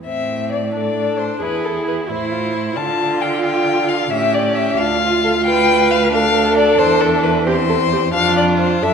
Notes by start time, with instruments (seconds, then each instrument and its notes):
0.05 cello A2, violin C4 E5
0.51 violin D5
0.74 violin D4 D5, viola A4
1.19 violin C5
1.42 cello E2, violin E4 B4, viola G#4
1.64 violin A4
1.87 violin B4
2.08 cello A2, violin E4 C5, viola E4
2.31 viola F4
2.54 viola E4
2.76 cello D3, violin F4 A5, viola F4
3.21 violin G5
3.44 violin G5
3.89 violin F5
4.11 cello A2, viola C#4, violin G4 E5
4.34 violin D5
4.55 violin E5
4.78 cello D2, viola D4, violin F4 F5
5.02 viola F4
5.24 viola A4
5.46 viola B4, violin G5
5.91 violin F5
6.12 violin D4 F5, viola A4
6.57 violin D5
6.79 cello E2, violin C5
7.01 violin A4
7.23 violin B4
7.46 violin C4 C5, viola G4
7.69 viola A4
7.92 viola G4
8.14 cello F2, violin D4 F5, viola F4
8.37 violin D5
8.58 violin C5
8.82 cello F#2, violin D4 E5, viola A4